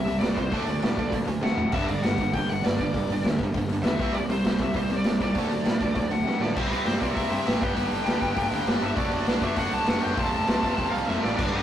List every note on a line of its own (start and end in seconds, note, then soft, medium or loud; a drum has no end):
0.00 0.20 C2 medium
0.00 0.18 E5 loud
0.06 0.20 C3 medium
0.06 0.20 G3 medium
0.06 open hi-hat medium
0.19 0.36 C2 medium
0.19 0.34 C3 medium
0.19 0.34 G3 medium
0.19 0.36 D5 medium
0.19 snare loud
0.19 open hi-hat medium
0.34 0.51 C2 medium
0.34 0.50 C3 medium
0.34 0.50 G3 medium
0.34 0.37 B4 medium
0.34 kick medium
0.34 open hi-hat medium
0.40 0.54 C5 medium
0.50 0.66 D2 medium
0.50 0.65 D3 medium
0.50 0.65 F#3 medium
0.50 0.66 A3 loud
0.50 kick medium
0.50 open hi-hat medium
0.54 0.67 D4 loud
0.54 1.15 D5 medium
0.66 0.81 D2 medium
0.66 0.78 D3 medium
0.66 0.79 F#3 medium
0.66 0.82 A3 medium
0.66 open hi-hat medium
0.80 0.93 D3 medium
0.80 0.94 F#3 medium
0.80 open hi-hat medium
0.84 0.97 A2 medium
0.84 0.96 A3 medium
0.84 snare loud
0.95 1.12 D2 medium
0.95 1.08 D3 medium
0.95 1.08 F#3 medium
0.95 kick medium
0.95 open hi-hat medium
0.99 1.12 A3 medium
1.09 1.26 D2 medium
1.09 1.23 D3 medium
1.09 1.24 F#3 medium
1.09 1.26 A3 medium
1.09 kick medium
1.09 open hi-hat medium
1.25 1.41 D2 medium
1.25 1.40 D3 medium
1.25 1.40 F#3 medium
1.25 1.41 A3 medium
1.25 open hi-hat soft
1.41 1.56 C3 medium
1.41 1.55 D3 medium
1.41 1.55 F#3 medium
1.41 1.56 A3 medium
1.41 1.73 F#5 medium
1.41 snare medium
1.56 1.74 A2 medium
1.56 1.71 D3 medium
1.56 1.71 F#3 medium
1.56 1.71 A3 medium
1.56 floor tom medium
1.72 2.01 G1 medium
1.72 1.86 G2 medium
1.72 1.86 D3 medium
1.72 1.87 G3 medium
1.72 1.89 E5 medium
1.72 kick loud
1.72 open hi-hat medium
1.72 crash medium
1.87 2.01 G2 medium
1.87 2.01 D3 medium
1.87 2.03 D5 medium
1.87 open hi-hat medium
2.02 2.17 G1 medium
2.02 2.16 G2 medium
2.02 2.16 D3 medium
2.02 2.34 F#5 medium
2.02 snare loud
2.02 open hi-hat medium
2.17 2.33 G1 medium
2.17 2.31 G2 medium
2.17 2.32 D3 medium
2.17 kick medium
2.17 open hi-hat medium
2.33 2.62 G1 medium
2.33 2.46 G2 medium
2.33 2.45 D3 medium
2.33 2.49 G5 loud
2.33 kick medium
2.33 open hi-hat medium
2.37 2.49 D3 medium
2.47 2.60 G2 medium
2.47 2.60 D3 medium
2.47 2.64 F#5 loud
2.47 open hi-hat medium
2.52 2.64 G2 medium
2.52 2.64 D3 medium
2.61 2.77 G1 medium
2.61 2.75 G2 medium
2.61 2.76 D3 medium
2.61 2.78 D5 medium
2.61 open hi-hat medium
2.66 2.79 G2 medium
2.66 2.78 D3 medium
2.66 snare loud
2.77 2.93 G1 medium
2.77 2.91 G2 medium
2.77 2.91 D3 medium
2.77 3.21 D5 medium
2.77 kick medium
2.77 open hi-hat medium
2.82 2.94 G2 medium
2.82 2.94 D3 medium
2.93 3.08 G1 medium
2.93 3.07 G2 medium
2.93 3.07 D3 medium
2.93 kick medium
2.93 open hi-hat medium
2.97 3.09 G2 medium
3.08 3.23 G1 medium
3.08 3.22 G2 medium
3.08 3.22 D3 medium
3.08 open hi-hat medium
3.12 3.24 G2 medium
3.12 3.24 D3 medium
3.23 3.38 D2 medium
3.23 3.37 G2 medium
3.23 3.37 D3 medium
3.23 snare loud
3.23 open hi-hat medium
3.28 3.39 G2 medium
3.28 3.39 D3 medium
3.38 3.53 G1 medium
3.38 3.52 G2 medium
3.38 3.52 D3 medium
3.38 kick medium
3.38 open hi-hat medium
3.43 3.55 G2 medium
3.43 3.55 D3 medium
3.54 3.67 G1 medium
3.54 3.68 G2 medium
3.54 3.68 D3 medium
3.54 kick medium
3.54 open hi-hat medium
3.68 3.82 G1 medium
3.68 3.83 G2 medium
3.68 3.83 D3 medium
3.68 open hi-hat medium
3.83 3.97 E2 loud
3.83 3.98 G2 medium
3.83 3.98 D3 medium
3.83 4.15 E5 loud
3.83 snare loud
3.83 open hi-hat medium
3.98 4.12 C2 medium
3.98 4.13 C3 medium
3.98 4.13 G3 medium
3.98 4.13 C4 loud
3.98 kick loud
3.98 open hi-hat medium
4.13 4.42 C2 medium
4.13 4.28 C3 medium
4.13 4.28 G3 medium
4.13 4.18 D5 medium
4.13 open hi-hat medium
4.29 4.43 C3 medium
4.29 4.43 G3 medium
4.29 4.61 C5 loud
4.29 open hi-hat medium
4.44 4.59 C2 medium
4.44 4.58 C3 medium
4.44 4.58 G3 medium
4.44 snare loud
4.44 open hi-hat medium
4.58 4.74 C2 medium
4.58 4.73 C3 medium
4.58 4.73 G3 medium
4.58 4.75 E5 loud
4.58 kick medium
4.58 open hi-hat medium
4.74 5.03 C2 medium
4.74 4.88 C3 medium
4.74 4.88 G3 medium
4.74 4.96 C5 medium
4.74 kick medium
4.74 open hi-hat medium
4.90 5.03 C3 medium
4.90 5.03 G3 medium
4.90 open hi-hat medium
4.97 5.15 D5 medium
5.04 5.19 C2 medium
5.04 5.18 C3 medium
5.04 5.19 G3 medium
5.04 snare loud
5.04 open hi-hat medium
5.20 5.34 C2 medium
5.20 5.34 C3 medium
5.20 5.34 G3 medium
5.20 6.23 D5 medium
5.20 kick medium
5.20 open hi-hat medium
5.35 5.49 D2 medium
5.35 5.49 D3 medium
5.35 5.49 F#3 medium
5.35 5.50 A3 loud
5.35 5.51 D4 loud
5.35 kick medium
5.35 open hi-hat medium
5.49 5.64 D2 medium
5.49 5.64 D3 medium
5.49 5.64 F#3 medium
5.49 5.65 A3 medium
5.49 open hi-hat medium
5.65 5.80 A2 medium
5.65 5.79 D3 medium
5.65 5.80 F#3 medium
5.65 5.79 A3 medium
5.65 snare loud
5.65 open hi-hat medium
5.80 5.95 D2 medium
5.80 5.95 D3 medium
5.80 5.95 F#3 medium
5.80 5.94 A3 medium
5.80 kick medium
5.80 open hi-hat medium
5.95 6.10 D2 medium
5.95 6.09 D3 medium
5.95 6.09 F#3 medium
5.95 6.09 A3 medium
5.95 kick medium
5.95 open hi-hat medium
6.11 6.23 D2 medium
6.11 6.24 D3 medium
6.11 6.24 F#3 medium
6.11 6.25 A3 medium
6.11 6.42 F#5 medium
6.11 open hi-hat medium
6.23 6.39 C3 medium
6.23 6.39 D3 medium
6.23 6.39 F#3 medium
6.28 6.40 A3 medium
6.28 snare medium
6.39 6.54 A2 medium
6.39 6.54 D3 medium
6.39 6.54 F#3 medium
6.39 6.55 A3 medium
6.39 6.56 D5 medium
6.39 snare medium
6.55 6.66 C2 medium
6.55 6.84 C3 medium
6.55 6.85 G3 medium
6.55 6.84 C4 medium
6.55 6.84 E4 loud
6.55 6.86 G4 loud
6.55 6.71 C5 medium
6.55 kick loud
6.55 crash loud
6.71 6.80 C2 medium
6.71 6.86 B4 medium
6.71 open hi-hat medium
6.85 6.95 G2 medium
6.85 7.01 C3 medium
6.85 7.01 G3 medium
6.85 7.00 C4 medium
6.85 7.00 E4 medium
6.85 7.00 G4 medium
6.85 7.02 C5 medium
6.85 snare loud
6.85 open hi-hat medium
6.99 7.11 C2 medium
6.99 7.15 C3 medium
6.99 7.15 G3 medium
6.99 7.15 C4 medium
6.99 7.16 E4 medium
6.99 7.16 G4 loud
6.99 7.14 D5 medium
6.99 kick medium
6.99 open hi-hat medium
7.15 7.25 C2 medium
7.15 7.45 C3 medium
7.15 7.45 G3 medium
7.15 7.46 C4 loud
7.15 7.45 E4 medium
7.15 7.46 G4 loud
7.15 7.62 E5 medium
7.15 kick medium
7.15 open hi-hat medium
7.31 7.40 G2 medium
7.31 open hi-hat medium
7.46 7.56 A1 medium
7.46 7.60 C3 medium
7.46 7.60 G3 medium
7.46 7.61 C4 medium
7.46 7.61 E4 medium
7.46 7.61 G4 medium
7.46 snare loud
7.46 open hi-hat medium
7.61 7.71 G1 medium
7.61 7.77 G2 loud
7.61 7.76 D3 loud
7.61 7.75 G3 medium
7.61 7.75 B3 loud
7.61 7.75 D4 loud
7.61 7.75 G4 loud
7.61 8.48 G5 medium
7.61 kick loud
7.61 open hi-hat medium
7.76 7.85 G1 medium
7.76 8.04 G2 medium
7.76 8.04 D3 medium
7.76 8.07 G3 medium
7.76 8.07 B3 medium
7.76 8.07 D4 medium
7.76 8.05 G4 loud
7.76 open hi-hat medium
7.91 8.00 G1 medium
7.91 open hi-hat medium
8.05 8.16 D2 medium
8.05 8.20 G2 medium
8.05 8.21 D3 medium
8.05 8.21 G3 medium
8.05 8.21 B3 medium
8.05 8.22 D4 medium
8.05 8.21 G4 medium
8.05 snare loud
8.05 open hi-hat medium
8.21 8.31 G1 medium
8.21 8.37 G2 medium
8.21 8.36 D3 medium
8.21 8.36 G3 medium
8.21 8.35 B3 medium
8.21 8.35 D4 loud
8.21 8.35 G4 medium
8.21 kick medium
8.21 open hi-hat medium
8.36 8.46 G1 medium
8.36 8.67 G2 medium
8.36 8.66 D3 medium
8.36 8.66 G3 medium
8.36 8.65 B3 medium
8.36 8.65 D4 medium
8.36 8.65 G4 loud
8.36 kick medium
8.36 open hi-hat medium
8.50 8.61 D2 medium
8.50 8.82 G2 medium
8.50 8.81 D3 medium
8.50 8.80 G3 medium
8.50 8.84 G5 loud
8.50 open hi-hat medium
8.66 8.75 G1 loud
8.66 8.80 G2 medium
8.66 8.81 D3 medium
8.66 8.80 G3 medium
8.66 8.80 B3 medium
8.66 8.80 D4 medium
8.66 8.81 G4 medium
8.66 snare loud
8.66 open hi-hat medium
8.81 8.91 G1 medium
8.81 8.96 G2 medium
8.81 8.95 D3 medium
8.81 8.96 G3 medium
8.81 8.96 B3 medium
8.81 8.96 D4 medium
8.81 8.96 G4 loud
8.81 8.95 E5 medium
8.81 open hi-hat medium
8.95 9.06 F#1 medium
8.95 9.26 D3 loud
8.95 9.25 F#3 medium
8.95 9.27 A3 medium
8.95 9.27 D4 loud
8.95 9.26 F#4 loud
8.95 9.09 D5 loud
8.95 kick loud
8.95 open hi-hat medium
9.10 9.22 F#1 medium
9.10 9.42 D5 loud
9.10 open hi-hat medium
9.26 9.37 C2 loud
9.26 9.43 D3 medium
9.26 9.43 F#3 medium
9.26 9.43 A3 medium
9.26 9.43 D4 loud
9.26 9.42 F#4 loud
9.26 snare loud
9.26 open hi-hat medium
9.40 9.51 F#1 medium
9.40 9.86 D4 medium
9.40 9.57 F#4 loud
9.40 9.59 E5 medium
9.40 kick medium
9.40 open hi-hat medium
9.44 9.56 D3 medium
9.44 9.56 F#3 medium
9.44 9.56 A3 medium
9.44 9.57 D4 medium
9.56 9.66 F#1 medium
9.56 9.86 D3 medium
9.56 9.85 F#3 medium
9.56 9.86 A3 medium
9.56 9.86 D4 loud
9.56 9.86 F#4 loud
9.56 9.74 F#5 loud
9.56 kick loud
9.56 open hi-hat medium
9.71 9.82 C2 medium
9.71 9.89 A5 loud
9.71 open hi-hat medium
9.86 9.97 F#1 medium
9.86 10.02 D3 medium
9.86 10.00 F#3 medium
9.86 10.00 A3 medium
9.86 10.00 D4 medium
9.86 9.99 F#4 loud
9.86 10.03 F#5 loud
9.86 snare loud
9.86 open hi-hat medium
10.00 10.17 D3 medium
10.00 10.15 F#3 medium
10.00 10.14 A3 medium
10.00 10.15 D4 medium
10.00 10.16 F#4 medium
10.00 10.19 G5 medium
10.00 open hi-hat medium
10.05 10.14 F#1 medium
10.15 10.26 F1 medium
10.15 10.45 F2 medium
10.15 10.46 C3 medium
10.15 10.45 F3 medium
10.15 10.46 A3 loud
10.15 10.46 C4 loud
10.15 10.47 F4 loud
10.15 11.09 A5 loud
10.15 kick loud
10.15 open hi-hat medium
10.32 10.42 F1 medium
10.32 open hi-hat medium
10.46 10.57 C2 medium
10.46 10.63 F2 medium
10.46 10.62 C3 medium
10.46 10.61 F3 medium
10.46 10.60 A3 medium
10.46 10.59 C4 medium
10.46 10.59 F4 medium
10.46 snare loud
10.46 open hi-hat medium
10.60 10.72 F1 medium
10.60 10.76 F2 medium
10.60 10.76 C3 medium
10.60 10.76 F3 medium
10.60 10.76 A3 medium
10.60 10.76 C4 medium
10.60 10.76 F4 medium
10.60 kick medium
10.60 open hi-hat medium
10.77 10.87 F1 medium
10.77 11.07 F2 medium
10.77 11.08 C3 medium
10.77 11.05 F3 medium
10.77 11.06 A3 loud
10.77 11.06 C4 medium
10.77 11.06 F4 loud
10.77 kick loud
10.77 open hi-hat medium
10.90 11.02 C2 medium
10.90 11.06 F5 medium
10.94 open hi-hat medium
11.07 11.17 F1 medium
11.07 11.23 F2 medium
11.07 11.23 C3 medium
11.07 11.22 F3 medium
11.07 11.21 A3 medium
11.07 11.21 C4 medium
11.07 11.20 F4 medium
11.07 11.21 E5 medium
11.07 snare medium
11.21 11.33 A1 medium
11.21 11.37 F2 medium
11.21 11.38 C3 medium
11.21 11.36 F3 medium
11.21 11.37 A3 medium
11.21 11.36 C4 medium
11.21 11.37 F4 medium
11.21 11.35 D5 medium
11.21 snare medium
11.36 11.49 G1 medium
11.36 11.53 G2 medium
11.36 11.53 D3 loud
11.36 11.53 G3 medium
11.36 11.51 B3 loud
11.36 11.52 D4 loud
11.36 11.53 D5 medium
11.36 kick loud
11.36 crash loud
11.51 11.63 G1 medium
11.51 11.63 G2 medium
11.51 11.63 D3 medium
11.51 11.63 G3 medium
11.51 11.63 B3 loud
11.51 11.63 D4 loud
11.51 11.56 B4 medium